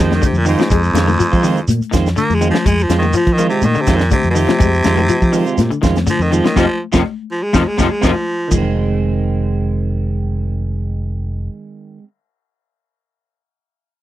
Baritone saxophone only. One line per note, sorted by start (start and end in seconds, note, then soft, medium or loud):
0.01 0.11 F3 medium
0.14 0.23 D#3 medium
0.25 0.39 C3 medium
0.37 0.47 A#2 medium
0.48 0.72 G#2 medium
0.71 1.65 F2 medium
2.18 2.36 A#3 medium
2.35 2.50 G#3 medium
2.50 2.68 F3 medium
2.66 2.84 G#3 medium
2.83 2.98 F3 medium
2.98 3.14 D#3 medium
3.17 3.34 F3 medium
3.33 3.47 D#3 medium
3.49 3.66 C3 medium
3.65 3.83 D#3 medium
3.81 3.97 C3 medium
3.96 4.11 A#2 medium
4.12 4.28 C3 medium
4.30 5.72 C3 loud
6.10 6.23 F3 medium
6.22 6.34 D#3 medium
6.33 6.44 F3 medium
6.46 6.56 D#3 medium
6.59 6.81 F3 medium
7.31 7.44 F3 medium
7.43 7.57 G#3 medium
7.56 7.69 F3 medium
7.68 7.81 G#3 medium
7.79 7.93 F3 medium
7.91 8.06 G#3 medium
8.04 8.51 F3 medium